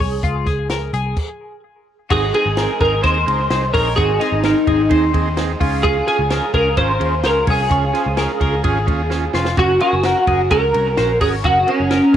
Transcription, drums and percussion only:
0.00 kick, open hi-hat
0.23 kick, closed hi-hat
0.46 kick, snare, closed hi-hat
0.69 snare, closed hi-hat
0.93 closed hi-hat
1.17 kick, crash
2.10 kick, crash
2.34 ride
2.57 snare, ride
2.81 kick, ride
3.04 kick, ride
3.28 ride
3.51 snare, ride
3.74 kick, open hi-hat, ride
3.98 kick, hi-hat pedal, ride
4.21 snare, ride
4.43 snare, ride
4.67 kick, ride
4.90 kick, ride
5.14 kick, ride
5.37 snare, ride
5.61 kick, open hi-hat, ride
5.84 kick, ride
6.07 snare, ride
6.30 snare, ride
6.54 kick, ride
6.77 kick, ride
7.01 ride
7.24 snare, ride
7.47 kick, open hi-hat, ride
7.71 kick, hi-hat pedal, ride
7.94 snare, ride
8.17 snare, ride
8.41 kick, ride
8.64 kick, ride
8.88 kick, ride
9.11 snare
9.34 snare
9.45 snare
9.57 kick, hi-hat pedal, ride
9.81 ride
10.04 snare, ride
10.27 kick, ride
10.51 kick, ride
10.74 ride
10.97 snare, ride
11.21 kick, open hi-hat, ride
11.44 kick, ride
11.68 ride
11.90 snare, ride

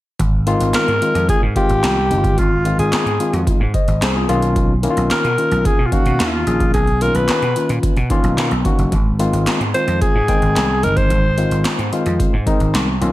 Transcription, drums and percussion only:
0.19 kick, closed hi-hat
0.47 closed hi-hat
0.61 closed hi-hat
0.74 snare, clap, closed hi-hat
0.88 closed hi-hat
1.02 closed hi-hat
1.15 closed hi-hat
1.29 kick, closed hi-hat
1.56 kick, closed hi-hat
1.69 closed hi-hat
1.84 snare, clap, closed hi-hat
2.11 closed hi-hat
2.24 kick, closed hi-hat
2.38 kick, closed hi-hat
2.65 closed hi-hat
2.79 closed hi-hat
2.92 snare, clap, closed hi-hat
3.07 closed hi-hat
3.20 closed hi-hat
3.33 closed hi-hat
3.47 kick, closed hi-hat
3.74 kick, closed hi-hat
3.88 closed hi-hat
4.02 snare, clap, closed hi-hat
4.29 closed hi-hat
4.42 closed hi-hat
4.56 kick, closed hi-hat
4.83 closed hi-hat
4.97 closed hi-hat
5.10 snare, clap, closed hi-hat
5.25 closed hi-hat
5.38 closed hi-hat
5.52 closed hi-hat
5.65 kick, closed hi-hat
5.92 kick, closed hi-hat
6.06 closed hi-hat
6.20 snare, clap, closed hi-hat
6.47 closed hi-hat
6.60 kick, closed hi-hat
6.74 kick, closed hi-hat
6.87 closed hi-hat
7.01 closed hi-hat
7.15 closed hi-hat
7.28 snare, clap, closed hi-hat
7.42 closed hi-hat
7.56 closed hi-hat
7.69 closed hi-hat
7.83 kick, closed hi-hat
7.97 closed hi-hat
8.10 kick, closed hi-hat
8.24 closed hi-hat
8.38 snare, clap, closed hi-hat
8.51 closed hi-hat
8.65 kick, closed hi-hat
8.79 closed hi-hat
8.92 kick, closed hi-hat
9.20 closed hi-hat
9.33 closed hi-hat
9.46 snare, clap, closed hi-hat
9.61 closed hi-hat
9.74 closed hi-hat
9.88 closed hi-hat
10.01 kick, closed hi-hat
10.28 kick, closed hi-hat
10.42 closed hi-hat
10.56 snare, clap, closed hi-hat
10.83 closed hi-hat
10.97 kick, closed hi-hat
11.10 kick, closed hi-hat
11.38 closed hi-hat
11.51 closed hi-hat
11.64 snare, clap, closed hi-hat
11.79 closed hi-hat
11.93 closed hi-hat
12.06 closed hi-hat
12.20 kick, closed hi-hat
12.47 kick, closed hi-hat
12.60 closed hi-hat
12.75 snare, clap, closed hi-hat
13.02 closed hi-hat

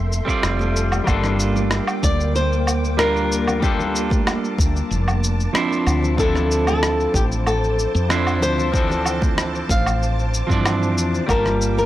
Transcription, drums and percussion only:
0.12 cabasa
0.28 kick, cabasa
0.43 cross-stick, cabasa
0.59 high conga, cabasa
0.76 cabasa
0.92 high conga, low conga, cabasa, low woodblock
1.07 kick, cabasa, low woodblock
1.24 cross-stick, low conga, cabasa
1.40 cabasa
1.56 high conga, low conga, cabasa
1.71 cross-stick, cabasa
1.87 cabasa, low woodblock
2.03 kick, cabasa
2.20 cabasa
2.36 cabasa
2.53 cabasa
2.67 cabasa, low woodblock
2.85 cabasa
2.99 cross-stick, cabasa
3.17 cabasa
3.32 cabasa
3.47 low conga, cabasa, low woodblock
3.63 kick, cabasa
3.79 low conga, cabasa
3.96 cabasa
4.10 kick, high conga, low conga, cabasa
4.27 cross-stick, cabasa, low woodblock
4.44 cabasa
4.58 kick, cabasa
4.76 cabasa
4.92 cabasa
5.08 cabasa, low woodblock
5.24 cabasa
5.40 cabasa
5.55 cross-stick, cabasa
5.72 cabasa
5.87 cabasa, low woodblock
6.03 low conga, cabasa
6.18 kick, cabasa
6.35 cross-stick, low conga, cabasa
6.51 cabasa
6.67 high conga, low conga, cabasa, low woodblock
6.83 cross-stick, cabasa
7.00 cabasa
7.14 kick, cabasa
7.32 cabasa
7.47 cabasa, low woodblock
7.64 cabasa
7.79 cabasa
7.96 cabasa
8.10 cross-stick, cabasa
8.27 cabasa, low woodblock
8.43 cabasa
8.58 low conga, cabasa
8.74 kick, cabasa
8.90 low conga, cabasa
9.05 cabasa, low woodblock
9.22 kick, high conga, low conga, cabasa
9.38 cross-stick, cabasa
9.55 cabasa
9.69 kick, cabasa
9.86 cabasa, low woodblock
10.03 cabasa
10.19 cabasa
10.34 cabasa
10.50 kick, cabasa
10.65 cross-stick, cabasa, low woodblock
10.83 cabasa
10.98 cabasa
11.13 low conga, cabasa
11.29 kick, cabasa, low woodblock
11.45 cross-stick, low conga, cabasa
11.62 cabasa
11.77 high conga, low conga, cabasa

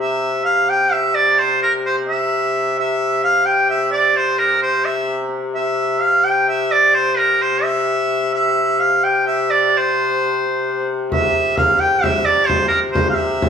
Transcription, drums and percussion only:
11.12 frame drum
11.57 frame drum
11.81 frame drum
12.04 frame drum
12.49 frame drum
12.95 frame drum
13.20 frame drum
13.42 frame drum

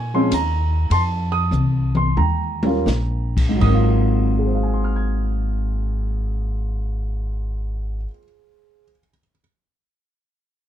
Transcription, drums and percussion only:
0.32 kick, hi-hat pedal, ride
0.90 kick, ride
1.52 hi-hat pedal, mid tom
1.95 mid tom
2.17 high tom
2.63 high tom
2.87 snare, hi-hat pedal
3.37 kick, crash
3.60 kick, crash

